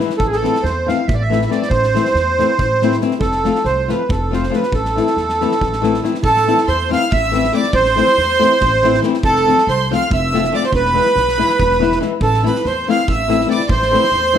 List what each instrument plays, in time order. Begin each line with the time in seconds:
Already playing: nylon-string guitar E3
0.00 nylon-string guitar G#3 B3 E4, snare
0.10 snare
0.18 upright bass A1, accordion A4, kick
0.27 accordion G#4
0.33 accordion A4, snare
0.42 nylon-string guitar E3 A3 C4 E4, snare
0.55 snare
0.63 upright bass E2, accordion C5, snare
0.86 nylon-string guitar E3 A3 C4 E4, accordion F5, snare
1.07 upright bass A1, accordion E5, kick
1.14 accordion D5
1.22 accordion E5
1.30 nylon-string guitar E3 A3 C4 E4, snare
1.42 accordion E5, snare
1.49 nylon-string guitar E3 A3 C4 E4, accordion D5, snare
1.62 snare
1.69 upright bass A1, accordion C5, kick
1.83 snare
1.94 nylon-string guitar E3 A3 C4 E4, snare
2.05 snare
2.14 upright bass E2, snare
2.39 nylon-string guitar E3 A3 C4 E4, snare
2.58 upright bass A1, kick
2.82 nylon-string guitar E3 A3 C4 E4, snare
2.92 snare
3.01 nylon-string guitar E3 A3 C4 E4, snare
3.11 snare
3.20 upright bass F1, accordion A4, kick
3.32 snare
3.44 nylon-string guitar F3 A3 C4 F4, snare
3.55 snare
3.65 upright bass C2, accordion C5, snare
3.88 nylon-string guitar F3 A3 C4 F4, accordion B4, snare
4.09 upright bass F1, accordion A4, kick
4.31 nylon-string guitar F3 A3 C4 F4, accordion C5, snare
4.43 snare
4.50 nylon-string guitar F3 A3 C4 F4, snare
4.54 accordion B4
4.63 snare
4.72 upright bass A1, accordion A4, kick
4.85 snare
4.96 nylon-string guitar E3 A3 C4 E4, snare
5.07 snare
5.17 upright bass E2, snare
5.29 snare
5.41 nylon-string guitar E3 A3 C4 E4, snare
5.51 snare
5.61 upright bass A1, kick
5.73 snare
5.82 nylon-string guitar E3 A3 C4 E4, snare
5.94 snare
6.02 nylon-string guitar E3 A3 C4 E4, snare
6.14 snare
6.23 upright bass A1, accordion A4, violin A5, kick
6.37 snare
6.47 nylon-string guitar E3 A3 C4 E4, snare
6.58 snare
6.67 upright bass E2, accordion C5, violin C6, snare
6.89 nylon-string guitar E3 A3 C4 E4, accordion F5, violin F6, snare
7.12 upright bass A1, accordion E5, violin E6, kick
7.31 nylon-string guitar E3 A3 C4 E4, snare
7.44 snare
7.52 nylon-string guitar E3 A3 C4 E4, violin D6, snare
7.56 accordion D5
7.63 snare
7.73 upright bass A1, accordion C5, violin C6, kick
7.85 snare
7.95 nylon-string guitar E3 A3 C4 E4, snare
8.08 snare
8.17 upright bass E2, snare
8.39 nylon-string guitar E3 A3 C4 E4, snare
8.61 upright bass A1, kick
8.83 nylon-string guitar E3 A3 C4 E4, snare
8.94 snare
9.02 nylon-string guitar E3 A3 C4 E4, snare
9.14 snare
9.23 upright bass F1, accordion A4, violin A5, kick
9.36 snare
9.46 nylon-string guitar F3 A3 C4 F4, snare
9.58 snare
9.67 upright bass C2, accordion C5, violin C6, snare
9.91 nylon-string guitar F3 A3 C4 F4, accordion F5, violin F6, snare
10.10 upright bass F1, accordion E5, violin E6, kick
10.32 nylon-string guitar F3 A3 C4 F4, snare
10.45 snare
10.52 nylon-string guitar F3 A3 C4 F4, accordion D5, violin D6, snare
10.63 accordion C5, violin C6, snare
10.72 upright bass E1, accordion B4, violin B5, kick
10.85 snare
10.93 nylon-string guitar E3 G#3 B3 E4, snare
11.06 snare
11.15 upright bass B1, snare
11.28 snare
11.38 nylon-string guitar E3 G#3 B3 E4, snare
11.50 snare
11.60 upright bass E1, kick
11.71 snare
11.80 nylon-string guitar E3 G#3 B3 E4, snare
11.92 snare
12.01 nylon-string guitar E3 G#3 B3 E4, snare
12.21 upright bass A1, accordion A4, violin A5, kick
12.34 snare
12.43 nylon-string guitar E3 A3 C4 E4, violin B5, snare
12.48 accordion B4
12.56 snare
12.65 upright bass E2, accordion C5, violin C6, snare
12.88 nylon-string guitar E3 A3 C4 E4, accordion F5, violin F6, snare
13.08 upright bass A1, accordion E5, violin E6, kick
13.28 nylon-string guitar E3 A3 C4 E4, snare
13.41 snare
13.46 nylon-string guitar E3 A3 C4 E4, accordion D5, snare
13.51 violin D6
13.60 snare
13.69 upright bass A1, accordion C5, violin C6, kick
13.82 snare
13.91 nylon-string guitar E3 A3 C4 E4, snare
14.04 snare
14.12 upright bass E2, snare
14.33 nylon-string guitar E3 A3 C4